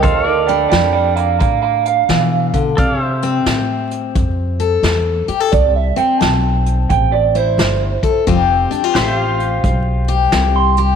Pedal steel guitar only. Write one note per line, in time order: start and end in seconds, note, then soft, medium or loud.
0.03 2.75 A4 medium
0.03 0.29 C5 medium
0.03 2.76 F5 medium
0.29 2.75 D5 medium
2.77 3.02 A4 medium
2.77 3.03 D5 medium
2.77 2.99 F5 medium
2.99 8.22 G4 medium
2.99 8.23 E5 medium
3.03 8.22 C5 medium
8.95 10.96 G4 medium
8.95 10.96 C5 medium
8.95 9.17 E5 medium
9.17 10.96 F5 medium